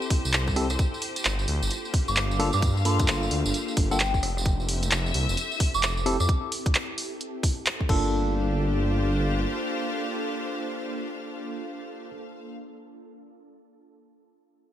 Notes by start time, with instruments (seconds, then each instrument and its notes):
Already playing: tine electric piano C4 E4 G4 A4, ambient pad C4 E4 G4 A4, string section G4 C5 E5
0.02 tambourine
0.10 kick, open hi-hat
0.25 detuned saw bass C2, tambourine
0.33 clap, closed hi-hat, tambourine
0.48 kick, tambourine
0.56 tine electric piano C4 E4 G4 A4, cross-stick, open hi-hat
0.70 cross-stick, closed hi-hat, tambourine
0.79 ambient pad A#3 D4 F4, kick, closed hi-hat, tambourine
0.94 tambourine
1.02 open hi-hat
1.16 closed hi-hat, tambourine
1.25 detuned saw bass G1, clap, closed hi-hat, tambourine
1.39 tambourine
1.48 detuned saw bass D2, open hi-hat
1.62 detuned saw bass G1, tambourine
1.70 closed hi-hat, tambourine
1.85 tambourine
1.90 string section F5, kick, open hi-hat
2.08 detuned saw bass G1, synth bell D6, tambourine
2.16 clap, closed hi-hat, tambourine
2.31 tambourine
2.39 tine electric piano A#3 D4 F4 A4, cross-stick, open hi-hat
2.53 detuned saw bass G2, synth bell D6, cross-stick, tambourine
2.62 ambient pad G4, kick, closed hi-hat, tambourine
2.77 tambourine
2.85 tine electric piano A#3 D4 F4 A4, synth bell C6, open hi-hat
2.99 kick, closed hi-hat, tambourine
3.08 detuned saw bass G1, clap, closed hi-hat, tambourine
3.23 tambourine
3.31 detuned saw bass D2, open hi-hat
3.45 detuned saw bass G1, tambourine
3.54 closed hi-hat, tambourine
3.68 tambourine
3.77 detuned saw bass G1, kick, open hi-hat
3.91 tine electric piano A#3 D4 F4 A4, synth bell G5, tambourine
4.00 clap, closed hi-hat, tambourine
4.14 kick, tambourine
4.23 detuned saw bass F1, cross-stick, open hi-hat
4.37 cross-stick, tambourine
4.45 ambient pad C4 E4 G4 A4, kick, closed hi-hat, tambourine
4.60 tambourine
4.69 string section E5, open hi-hat
4.83 closed hi-hat, tambourine
4.91 detuned saw bass F1, clap, closed hi-hat, tambourine
5.06 tambourine
5.14 detuned saw bass C2, open hi-hat
5.29 detuned saw bass F1, tambourine
5.37 closed hi-hat, tambourine
5.52 tambourine
5.60 kick, open hi-hat
5.74 detuned saw bass F1, synth bell D6, tambourine
5.83 clap, closed hi-hat, tambourine
5.97 tambourine
6.06 tine electric piano C4 E4 G4 A4, cross-stick, open hi-hat
6.20 detuned saw bass F2, synth bell D6, cross-stick, tambourine
6.29 kick, closed hi-hat
6.52 open hi-hat
6.66 kick, closed hi-hat
6.75 clap, closed hi-hat
6.98 open hi-hat
7.21 closed hi-hat
7.43 kick, open hi-hat
7.66 clap, closed hi-hat
7.81 kick
7.89 detuned saw bass G1, ambient pad A#3 D4 F4 A4, tine electric piano A#3 D4 F4 A4, string section D4, kick, crash
7.98 string section G4
8.29 string section C5
8.34 string section F5